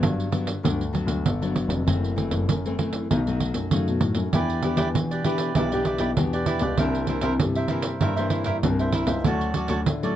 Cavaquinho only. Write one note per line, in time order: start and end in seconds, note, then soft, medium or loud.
4.33 4.62 E4 medium
4.33 4.63 G4 medium
4.33 4.63 B4 medium
4.33 4.64 D5 medium
4.63 4.76 E4 soft
4.63 4.76 G4 medium
4.63 4.77 B4 medium
4.63 4.77 D5 medium
4.77 4.87 E4 medium
4.77 4.87 G4 medium
4.77 4.88 B4 medium
4.77 4.88 D5 medium
5.11 5.24 G4 soft
5.11 5.25 B4 soft
5.11 5.25 D5 medium
5.24 5.54 E4 medium
5.24 5.55 G4 medium
5.24 5.55 B4 medium
5.24 5.55 D5 medium
5.56 5.70 E4 medium
5.56 5.71 G4 medium
5.56 5.71 B4 medium
5.56 5.71 D5 medium
5.73 5.85 G4 soft
5.73 5.85 B4 medium
5.73 5.86 D5 soft
5.85 5.98 E4 soft
5.85 5.98 G4 soft
5.85 5.99 B4 medium
5.85 5.99 D5 medium
5.99 6.10 E4 medium
5.99 6.10 G4 medium
5.99 6.10 B4 medium
5.99 6.10 D5 medium
6.33 6.46 G4 soft
6.33 6.47 B4 soft
6.33 6.47 D5 soft
6.47 6.62 E4 medium
6.47 6.62 G4 medium
6.47 6.61 B4 medium
6.47 6.60 D5 medium
6.61 6.77 G4 soft
6.61 6.77 B4 soft
6.61 6.77 D5 soft
6.78 7.06 E4 medium
6.78 7.07 A#4 medium
6.78 7.08 C5 medium
6.78 7.08 E5 medium
7.08 7.21 E4 soft
7.08 7.21 A#4 soft
7.08 7.21 C5 medium
7.08 7.22 E5 soft
7.22 7.33 E4 medium
7.22 7.33 A#4 medium
7.22 7.33 C5 medium
7.22 7.33 E5 medium
7.56 7.68 A#4 soft
7.56 7.69 C5 soft
7.56 7.69 E5 medium
7.69 8.00 E4 medium
7.69 8.00 A#4 medium
7.69 8.00 C5 medium
7.69 8.00 E5 medium
8.01 8.16 E4 medium
8.01 8.16 A#4 medium
8.01 8.16 C5 medium
8.01 8.15 E5 medium
8.16 8.31 A#4 soft
8.16 8.31 C5 soft
8.16 8.31 E5 medium
8.31 8.44 E4 medium
8.31 8.44 A#4 soft
8.31 8.45 C5 soft
8.31 8.45 E5 medium
8.45 8.56 E4 medium
8.45 8.56 A#4 medium
8.45 8.56 C5 medium
8.45 8.56 E5 medium
8.80 8.93 A#4 soft
8.80 8.93 C5 soft
8.80 8.93 E5 soft
8.93 9.08 E4 medium
8.93 9.08 A#4 medium
8.93 9.07 C5 medium
8.93 9.06 E5 medium
9.08 9.24 A#4 soft
9.08 9.23 C5 soft
9.08 9.23 E5 soft
9.26 9.53 F#4 medium
9.26 9.55 A4 medium
9.26 9.55 C#5 medium
9.26 9.56 D5 medium
9.55 9.68 F#4 medium
9.55 9.68 A4 soft
9.55 9.68 C#5 medium
9.55 9.69 D5 medium
9.69 9.79 F#4 medium
9.69 9.79 A4 medium
9.69 9.79 C#5 medium
9.69 9.80 D5 medium
10.03 10.16 A4 soft
10.03 10.16 C#5 soft
10.03 10.16 D5 medium